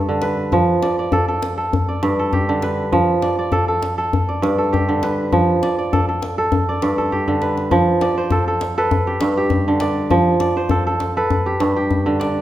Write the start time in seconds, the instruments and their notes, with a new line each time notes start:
Already playing: kora G2 A4 D5
0.09 kora D3
0.22 kora B4, djembe slap
0.52 kora F3, djembe tone, djembe bass
0.82 kora D5, djembe slap
0.99 kora D5
1.12 kora A4, djembe slap, djembe tone, djembe bass
1.28 kora A4
1.42 djembe slap
1.58 kora A4
1.73 djembe slap, djembe tone, djembe bass
1.89 kora D5
2.03 kora G2, djembe slap
2.19 kora A4
2.33 kora G4, djembe tone, djembe bass
2.49 kora D3
2.62 kora B4, djembe slap
2.92 kora F3, djembe tone, djembe bass
3.22 kora D5, djembe slap
3.39 kora D5
3.52 kora A4, djembe slap, djembe tone, djembe bass
3.68 kora A4
3.82 djembe slap
3.98 kora A4
4.13 djembe slap, djembe tone, djembe bass
4.29 kora D5
4.42 kora G2, djembe slap
4.58 kora A4
4.73 kora G4, djembe tone, djembe bass
4.89 kora D3
5.03 kora B4, djembe slap
5.32 kora F3, djembe tone, djembe bass
5.63 kora D5, djembe slap
5.78 kora D5, djembe slap
5.93 kora A4, djembe tone, djembe bass
6.09 kora A4, djembe slap
6.22 djembe slap
6.38 kora A4
6.52 djembe tone, djembe bass
6.69 kora D5
6.82 kora G2, djembe slap
6.98 kora A4, djembe bass
7.12 kora G4, djembe bass
7.28 kora D3, djembe bass
7.42 kora B4, djembe slap
7.58 djembe slap
7.71 kora F3, djembe tone, djembe bass
8.01 kora D5, djembe slap
8.18 kora C5
8.30 kora A4, djembe slap, djembe tone, djembe bass
8.48 kora A4
8.61 djembe slap
8.78 kora A4 B4
8.91 djembe slap, djembe tone, djembe bass
9.07 kora G4
9.21 kora G2, djembe slap
9.37 kora G4
9.50 djembe tone, djembe bass
9.68 kora D3
9.80 kora D5, djembe slap
10.10 kora F3, djembe tone, djembe bass
10.40 kora D5, djembe slap
10.57 kora C5
10.69 kora A4, djembe slap, djembe tone, djembe bass
10.87 kora A4
11.00 djembe slap
11.17 kora A4 B4
11.30 djembe slap, djembe tone, djembe bass
11.46 kora G4
11.60 kora G2, djembe slap
11.76 kora G4
11.91 djembe tone, djembe bass
12.06 kora D3
12.20 kora D5, djembe slap